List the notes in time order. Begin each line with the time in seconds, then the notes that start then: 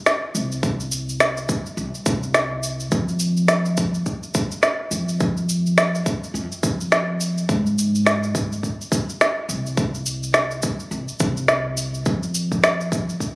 0.06 snare, shaker
0.35 C2, shaker
0.52 shaker
0.63 kick, shaker
0.80 shaker
0.92 shaker
1.09 shaker
1.20 snare, shaker
1.37 shaker
1.49 kick, shaker
1.66 shaker
1.77 C2, shaker
1.95 shaker
2.06 C2, kick, shaker
2.23 shaker
2.34 snare, shaker
2.63 shaker
2.80 shaker
2.91 F2, kick, shaker
3.08 shaker
3.19 shaker
3.37 shaker
3.48 snare, shaker
3.65 shaker
3.77 kick, shaker
3.94 shaker
4.06 kick, shaker
4.23 shaker
4.34 kick, shaker
4.51 shaker
4.63 snare, shaker
4.91 F2, shaker
5.09 shaker
5.20 kick, shaker
5.37 shaker
5.49 shaker
5.66 shaker
5.78 snare, shaker
5.95 shaker
6.06 kick, shaker
6.24 shaker
6.34 F2, shaker
6.52 shaker
6.63 F2, kick, shaker
6.81 shaker
6.92 snare, shaker
7.21 shaker
7.38 shaker
7.49 G#2, kick, shaker
7.66 shaker
7.78 shaker
7.95 shaker
8.06 snare, shaker
8.23 shaker
8.35 kick, shaker
8.52 shaker
8.63 kick, shaker
8.81 shaker
8.92 kick, shaker
9.10 shaker
9.21 snare, shaker
9.49 C2, shaker
9.66 shaker
9.77 kick, shaker
9.95 shaker
10.06 shaker
10.23 shaker
10.34 snare, shaker
10.51 shaker
10.62 kick, shaker
10.80 shaker
10.91 C2, shaker
11.08 shaker
11.20 C2, kick, shaker
11.37 shaker
11.48 snare, shaker
11.77 shaker
11.94 shaker
12.06 F2, kick, shaker
12.23 shaker
12.35 shaker
12.52 kick, shaker
12.64 snare, shaker
12.81 shaker
12.92 kick, shaker
13.09 shaker
13.20 kick, shaker